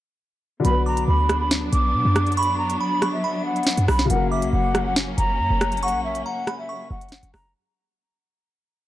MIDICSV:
0, 0, Header, 1, 7, 480
1, 0, Start_track
1, 0, Key_signature, 2, "minor"
1, 0, Tempo, 431655
1, 719, Time_signature, 4, 2, 24, 8
1, 9870, End_track
2, 0, Start_track
2, 0, Title_t, "Synth bell"
2, 0, Program_c, 0, 98
2, 959, Note_on_c, 0, 86, 79
2, 2115, Note_off_c, 0, 86, 0
2, 2639, Note_on_c, 0, 85, 113
2, 3090, Note_off_c, 0, 85, 0
2, 3119, Note_on_c, 0, 83, 77
2, 3347, Note_off_c, 0, 83, 0
2, 3361, Note_on_c, 0, 85, 85
2, 3588, Note_off_c, 0, 85, 0
2, 3602, Note_on_c, 0, 83, 85
2, 4516, Note_off_c, 0, 83, 0
2, 4799, Note_on_c, 0, 86, 85
2, 5955, Note_off_c, 0, 86, 0
2, 6482, Note_on_c, 0, 85, 106
2, 6932, Note_off_c, 0, 85, 0
2, 6959, Note_on_c, 0, 82, 88
2, 7187, Note_off_c, 0, 82, 0
2, 7198, Note_on_c, 0, 83, 76
2, 7426, Note_off_c, 0, 83, 0
2, 7439, Note_on_c, 0, 85, 81
2, 8355, Note_off_c, 0, 85, 0
2, 9870, End_track
3, 0, Start_track
3, 0, Title_t, "Flute"
3, 0, Program_c, 1, 73
3, 723, Note_on_c, 1, 83, 95
3, 919, Note_off_c, 1, 83, 0
3, 963, Note_on_c, 1, 82, 94
3, 1159, Note_off_c, 1, 82, 0
3, 1199, Note_on_c, 1, 83, 84
3, 1537, Note_off_c, 1, 83, 0
3, 1561, Note_on_c, 1, 83, 84
3, 1659, Note_off_c, 1, 83, 0
3, 1918, Note_on_c, 1, 86, 97
3, 2595, Note_off_c, 1, 86, 0
3, 2639, Note_on_c, 1, 83, 92
3, 2836, Note_off_c, 1, 83, 0
3, 2869, Note_on_c, 1, 82, 75
3, 3071, Note_off_c, 1, 82, 0
3, 3119, Note_on_c, 1, 83, 88
3, 3458, Note_off_c, 1, 83, 0
3, 3476, Note_on_c, 1, 76, 81
3, 3816, Note_off_c, 1, 76, 0
3, 3842, Note_on_c, 1, 78, 81
3, 4292, Note_off_c, 1, 78, 0
3, 4322, Note_on_c, 1, 83, 85
3, 4518, Note_off_c, 1, 83, 0
3, 4555, Note_on_c, 1, 78, 96
3, 4754, Note_off_c, 1, 78, 0
3, 4791, Note_on_c, 1, 76, 80
3, 4992, Note_off_c, 1, 76, 0
3, 5032, Note_on_c, 1, 78, 90
3, 5374, Note_off_c, 1, 78, 0
3, 5406, Note_on_c, 1, 78, 81
3, 5502, Note_off_c, 1, 78, 0
3, 5763, Note_on_c, 1, 82, 98
3, 6438, Note_off_c, 1, 82, 0
3, 6485, Note_on_c, 1, 78, 93
3, 6680, Note_off_c, 1, 78, 0
3, 6721, Note_on_c, 1, 76, 86
3, 6918, Note_off_c, 1, 76, 0
3, 6963, Note_on_c, 1, 78, 89
3, 7300, Note_off_c, 1, 78, 0
3, 7321, Note_on_c, 1, 76, 77
3, 7659, Note_off_c, 1, 76, 0
3, 7686, Note_on_c, 1, 78, 79
3, 8134, Note_off_c, 1, 78, 0
3, 8158, Note_on_c, 1, 82, 95
3, 8356, Note_off_c, 1, 82, 0
3, 9870, End_track
4, 0, Start_track
4, 0, Title_t, "String section"
4, 0, Program_c, 2, 48
4, 719, Note_on_c, 2, 62, 89
4, 720, Note_on_c, 2, 54, 78
4, 720, Note_on_c, 2, 59, 73
4, 4521, Note_off_c, 2, 59, 0
4, 4521, Note_off_c, 2, 62, 0
4, 4559, Note_on_c, 2, 58, 73
4, 4559, Note_on_c, 2, 61, 90
4, 8355, Note_off_c, 2, 54, 0
4, 8361, Note_off_c, 2, 58, 0
4, 8361, Note_off_c, 2, 61, 0
4, 9870, End_track
5, 0, Start_track
5, 0, Title_t, "Grand piano"
5, 0, Program_c, 3, 0
5, 665, Note_on_c, 3, 50, 71
5, 692, Note_on_c, 3, 54, 62
5, 719, Note_on_c, 3, 59, 59
5, 746, Note_on_c, 3, 66, 62
5, 773, Note_on_c, 3, 71, 75
5, 942, Control_c, 3, 64, 127
5, 4488, Note_off_c, 3, 50, 0
5, 4501, Note_off_c, 3, 54, 0
5, 4507, Note_on_c, 3, 49, 69
5, 4515, Note_off_c, 3, 59, 0
5, 4528, Note_off_c, 3, 66, 0
5, 4533, Note_on_c, 3, 54, 62
5, 4541, Note_off_c, 3, 71, 0
5, 4560, Note_on_c, 3, 58, 64
5, 4575, Control_c, 3, 64, 0
5, 4587, Note_on_c, 3, 66, 67
5, 4614, Note_on_c, 3, 70, 70
5, 4744, Control_c, 3, 64, 127
5, 8329, Note_off_c, 3, 49, 0
5, 8342, Note_off_c, 3, 54, 0
5, 8355, Note_off_c, 3, 58, 0
5, 8369, Note_off_c, 3, 66, 0
5, 8382, Note_off_c, 3, 70, 0
5, 8415, Control_c, 3, 64, 0
5, 9870, End_track
6, 0, Start_track
6, 0, Title_t, "808-style bass"
6, 0, Program_c, 4, 38
6, 720, Note_on_c, 4, 35, 111
6, 1180, Note_off_c, 4, 35, 0
6, 1200, Note_on_c, 4, 38, 107
6, 1891, Note_off_c, 4, 38, 0
6, 1919, Note_on_c, 4, 35, 110
6, 2159, Note_on_c, 4, 47, 103
6, 2176, Note_off_c, 4, 35, 0
6, 2273, Note_off_c, 4, 47, 0
6, 2279, Note_on_c, 4, 42, 98
6, 3086, Note_off_c, 4, 42, 0
6, 4199, Note_on_c, 4, 42, 105
6, 4314, Note_off_c, 4, 42, 0
6, 4319, Note_on_c, 4, 35, 104
6, 4549, Note_off_c, 4, 35, 0
6, 4558, Note_on_c, 4, 30, 110
6, 4919, Note_on_c, 4, 34, 100
6, 4935, Note_off_c, 4, 30, 0
6, 5033, Note_off_c, 4, 34, 0
6, 5039, Note_on_c, 4, 30, 110
6, 5730, Note_off_c, 4, 30, 0
6, 5758, Note_on_c, 4, 30, 111
6, 5999, Note_on_c, 4, 42, 102
6, 6015, Note_off_c, 4, 30, 0
6, 6113, Note_off_c, 4, 42, 0
6, 6118, Note_on_c, 4, 30, 101
6, 6599, Note_on_c, 4, 34, 104
6, 6616, Note_off_c, 4, 30, 0
6, 6941, Note_off_c, 4, 34, 0
6, 7679, Note_on_c, 4, 30, 107
6, 7919, Note_on_c, 4, 31, 105
6, 7935, Note_off_c, 4, 30, 0
6, 8033, Note_off_c, 4, 31, 0
6, 8039, Note_on_c, 4, 30, 101
6, 8154, Note_off_c, 4, 30, 0
6, 8159, Note_on_c, 4, 30, 106
6, 8390, Note_off_c, 4, 30, 0
6, 9870, End_track
7, 0, Start_track
7, 0, Title_t, "Drums"
7, 719, Note_on_c, 9, 42, 89
7, 830, Note_off_c, 9, 42, 0
7, 1079, Note_on_c, 9, 42, 70
7, 1191, Note_off_c, 9, 42, 0
7, 1438, Note_on_c, 9, 37, 100
7, 1439, Note_on_c, 9, 42, 72
7, 1549, Note_off_c, 9, 37, 0
7, 1550, Note_off_c, 9, 42, 0
7, 1679, Note_on_c, 9, 42, 88
7, 1680, Note_on_c, 9, 38, 119
7, 1790, Note_off_c, 9, 42, 0
7, 1791, Note_off_c, 9, 38, 0
7, 1919, Note_on_c, 9, 42, 80
7, 2030, Note_off_c, 9, 42, 0
7, 2398, Note_on_c, 9, 42, 62
7, 2399, Note_on_c, 9, 37, 105
7, 2510, Note_off_c, 9, 37, 0
7, 2510, Note_off_c, 9, 42, 0
7, 2519, Note_on_c, 9, 42, 41
7, 2579, Note_off_c, 9, 42, 0
7, 2579, Note_on_c, 9, 42, 49
7, 2638, Note_off_c, 9, 42, 0
7, 2638, Note_on_c, 9, 42, 59
7, 2699, Note_off_c, 9, 42, 0
7, 2699, Note_on_c, 9, 42, 70
7, 2810, Note_off_c, 9, 42, 0
7, 2999, Note_on_c, 9, 42, 69
7, 3110, Note_off_c, 9, 42, 0
7, 3357, Note_on_c, 9, 37, 99
7, 3359, Note_on_c, 9, 42, 73
7, 3469, Note_off_c, 9, 37, 0
7, 3470, Note_off_c, 9, 42, 0
7, 3958, Note_on_c, 9, 42, 40
7, 4038, Note_off_c, 9, 42, 0
7, 4038, Note_on_c, 9, 42, 53
7, 4077, Note_on_c, 9, 38, 124
7, 4117, Note_off_c, 9, 42, 0
7, 4117, Note_on_c, 9, 42, 68
7, 4188, Note_off_c, 9, 38, 0
7, 4198, Note_off_c, 9, 42, 0
7, 4198, Note_on_c, 9, 42, 97
7, 4309, Note_off_c, 9, 42, 0
7, 4318, Note_on_c, 9, 37, 104
7, 4318, Note_on_c, 9, 46, 46
7, 4429, Note_off_c, 9, 37, 0
7, 4429, Note_off_c, 9, 46, 0
7, 4438, Note_on_c, 9, 38, 68
7, 4549, Note_off_c, 9, 38, 0
7, 4558, Note_on_c, 9, 42, 88
7, 4669, Note_off_c, 9, 42, 0
7, 4918, Note_on_c, 9, 42, 68
7, 5029, Note_off_c, 9, 42, 0
7, 5278, Note_on_c, 9, 37, 99
7, 5279, Note_on_c, 9, 42, 73
7, 5389, Note_off_c, 9, 37, 0
7, 5390, Note_off_c, 9, 42, 0
7, 5518, Note_on_c, 9, 42, 87
7, 5519, Note_on_c, 9, 38, 119
7, 5629, Note_off_c, 9, 42, 0
7, 5630, Note_off_c, 9, 38, 0
7, 5759, Note_on_c, 9, 42, 81
7, 5870, Note_off_c, 9, 42, 0
7, 6239, Note_on_c, 9, 37, 105
7, 6239, Note_on_c, 9, 42, 62
7, 6350, Note_off_c, 9, 37, 0
7, 6350, Note_off_c, 9, 42, 0
7, 6359, Note_on_c, 9, 42, 38
7, 6419, Note_off_c, 9, 42, 0
7, 6419, Note_on_c, 9, 42, 47
7, 6479, Note_off_c, 9, 42, 0
7, 6479, Note_on_c, 9, 42, 59
7, 6538, Note_off_c, 9, 42, 0
7, 6538, Note_on_c, 9, 42, 66
7, 6650, Note_off_c, 9, 42, 0
7, 6838, Note_on_c, 9, 42, 69
7, 6950, Note_off_c, 9, 42, 0
7, 7197, Note_on_c, 9, 37, 101
7, 7198, Note_on_c, 9, 42, 72
7, 7308, Note_off_c, 9, 37, 0
7, 7309, Note_off_c, 9, 42, 0
7, 7799, Note_on_c, 9, 42, 57
7, 7880, Note_off_c, 9, 42, 0
7, 7880, Note_on_c, 9, 42, 55
7, 7918, Note_on_c, 9, 38, 122
7, 7959, Note_off_c, 9, 42, 0
7, 7959, Note_on_c, 9, 42, 57
7, 8030, Note_off_c, 9, 38, 0
7, 8039, Note_off_c, 9, 42, 0
7, 8039, Note_on_c, 9, 42, 99
7, 8150, Note_off_c, 9, 42, 0
7, 8159, Note_on_c, 9, 37, 102
7, 8159, Note_on_c, 9, 46, 46
7, 8270, Note_off_c, 9, 37, 0
7, 8270, Note_off_c, 9, 46, 0
7, 9870, End_track
0, 0, End_of_file